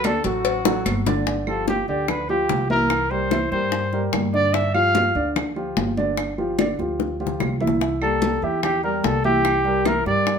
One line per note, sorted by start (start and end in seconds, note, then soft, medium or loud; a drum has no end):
0.00 0.18 D2 medium
0.00 0.21 D3 medium
0.04 0.21 D4 medium
0.04 0.25 A4 medium
0.04 0.21 D5 medium
0.04 cowbell medium
0.04 high conga loud
0.04 claves medium
0.24 0.82 A1 loud
0.24 0.58 F#3 medium
0.24 0.58 F#4 medium
0.24 1.13 F#4 medium
0.24 0.58 A4 medium
0.24 cowbell medium
0.24 high conga soft
0.45 cowbell loud
0.45 high conga soft
0.65 0.99 F#3 medium
0.65 0.99 F#4 medium
0.65 0.99 A4 medium
0.65 high bongo loud
0.65 high conga soft
0.86 1.82 G1 medium
0.86 cowbell medium
0.86 high conga medium
0.86 claves medium
1.06 1.23 D3 loud
1.06 1.23 D4 medium
1.06 1.23 D5 loud
1.06 cowbell medium
1.06 low bongo loud
1.06 high conga medium
1.27 1.43 D3 medium
1.27 1.44 D4 medium
1.27 1.44 D5 medium
1.27 high bongo medium
1.27 high conga soft
1.47 1.81 F3 medium
1.47 1.81 F4 medium
1.47 1.81 G4 medium
1.47 1.67 A4 medium
1.47 high conga soft
1.47 claves medium
1.68 1.87 G4 medium
1.68 high bongo medium
1.68 high conga medium
1.88 2.45 D2 medium
1.88 2.22 D3 medium
1.88 2.22 D4 medium
1.88 2.11 G4 medium
1.88 2.22 D5 medium
2.08 2.29 B4 medium
2.08 high bongo medium
2.08 high conga soft
2.08 low conga medium
2.08 claves medium
2.29 2.63 F3 medium
2.29 2.63 F4 medium
2.29 2.67 G4 medium
2.29 2.63 G4 medium
2.29 high conga soft
2.49 3.46 C2 medium
2.49 high bongo medium
2.49 low bongo medium
2.49 high conga medium
2.70 3.03 E3 medium
2.70 3.03 E4 medium
2.70 3.12 A#4 medium
2.70 3.04 E5 medium
2.70 high conga medium
2.90 high bongo medium
2.90 high conga soft
2.90 claves medium
3.11 3.28 G3 medium
3.11 3.28 G4 medium
3.11 3.28 A#4 medium
3.11 3.51 C5 medium
3.11 high conga soft
3.31 3.48 E3 medium
3.31 3.48 E4 medium
3.31 3.48 E5 medium
3.31 high bongo medium
3.31 high conga medium
3.31 claves medium
3.51 4.09 G2 medium
3.51 3.86 G3 medium
3.51 3.86 G4 medium
3.51 3.86 A#4 medium
3.51 4.09 C5 medium
3.51 high bongo soft
3.51 high conga soft
3.72 high bongo medium
3.72 high conga soft
3.93 4.26 G3 medium
3.93 4.27 G4 medium
3.93 4.27 A#4 medium
3.93 high bongo soft
3.93 high conga soft
4.13 5.09 G2 medium
4.13 high bongo medium
4.13 low bongo medium
4.13 high conga medium
4.13 claves medium
4.33 4.50 D3 medium
4.33 4.50 D4 medium
4.33 4.55 D5 loud
4.33 4.51 D5 medium
4.33 high bongo soft
4.53 4.71 D3 medium
4.53 4.71 D4 medium
4.53 4.71 D5 medium
4.53 4.74 E5 loud
4.53 high bongo medium
4.53 high conga soft
4.74 5.08 F3 medium
4.74 5.08 F4 medium
4.74 5.08 G4 medium
4.74 5.32 F5 loud
4.74 high conga soft
4.74 claves medium
4.95 high bongo medium
4.95 high conga medium
5.15 5.73 D2 loud
5.15 5.49 D3 medium
5.15 5.49 D4 medium
5.15 5.49 D5 medium
5.36 high bongo medium
5.36 high conga soft
5.36 low conga medium
5.36 claves medium
5.56 5.90 F3 medium
5.56 5.90 F4 medium
5.56 5.90 G4 medium
5.56 high conga soft
5.77 6.73 G1 medium
5.77 high bongo medium
5.77 low bongo medium
5.77 high conga medium
5.97 6.31 D3 medium
5.97 6.31 D4 medium
5.97 6.31 D5 medium
5.97 high conga medium
6.17 high bongo medium
6.17 high conga soft
6.17 claves medium
6.38 6.55 F3 medium
6.38 6.55 F4 medium
6.38 6.55 G4 medium
6.38 high conga soft
6.58 6.75 D3 medium
6.58 6.75 D4 medium
6.58 6.75 D5 medium
6.58 high bongo medium
6.58 high conga medium
6.58 claves medium
6.79 7.36 D2 medium
6.79 7.13 F3 medium
6.79 7.13 F4 medium
6.79 7.13 G4 medium
6.79 high bongo soft
6.79 high conga soft
7.00 high bongo medium
7.00 high conga soft
7.20 7.53 F3 medium
7.20 7.54 F4 medium
7.20 7.54 G4 medium
7.20 high conga soft
7.27 low bongo medium
7.40 8.36 C2 medium
7.40 low bongo medium
7.40 high conga medium
7.40 claves medium
7.61 7.77 E3 medium
7.61 7.78 E4 medium
7.61 7.78 E5 medium
7.61 high conga medium
7.67 low bongo medium
7.81 7.98 E3 medium
7.81 7.98 E4 medium
7.81 7.98 E5 medium
7.81 high bongo medium
7.81 high conga soft
8.02 8.35 G3 medium
8.02 8.36 A#3 medium
8.02 8.35 G4 medium
8.02 8.45 A4 medium
8.02 high conga soft
8.02 claves medium
8.22 high bongo medium
8.22 high conga medium
8.42 9.00 E2 medium
8.42 8.76 E3 medium
8.42 8.76 E4 medium
8.42 8.63 G4 medium
8.42 8.77 E5 medium
8.63 8.82 G4 medium
8.63 high bongo medium
8.63 high conga soft
8.63 low conga medium
8.63 claves medium
8.84 9.17 G3 medium
8.84 9.17 G4 medium
8.84 9.06 A#4 medium
8.84 9.17 A#4 medium
8.84 high conga soft
9.03 10.00 C2 medium
9.03 9.24 A4 medium
9.03 high bongo medium
9.03 low bongo medium
9.03 high conga medium
9.24 9.58 E3 medium
9.24 9.58 E4 medium
9.24 9.88 G4 medium
9.24 9.58 E5 medium
9.24 high conga medium
9.45 high bongo medium
9.45 high conga soft
9.45 claves medium
9.65 9.82 G3 medium
9.65 9.82 G4 medium
9.65 9.82 A#4 medium
9.65 high conga soft
9.85 10.02 E3 medium
9.85 10.03 E4 medium
9.85 10.06 A#4 medium
9.85 10.03 E5 medium
9.85 high bongo medium
9.85 high conga loud
9.85 claves medium
10.06 10.39 G2 medium
10.06 10.39 G3 medium
10.06 10.39 G4 medium
10.06 10.39 A#4 medium
10.06 10.39 D5 medium
10.06 high bongo soft
10.06 high conga soft
10.27 high bongo medium
10.27 high conga soft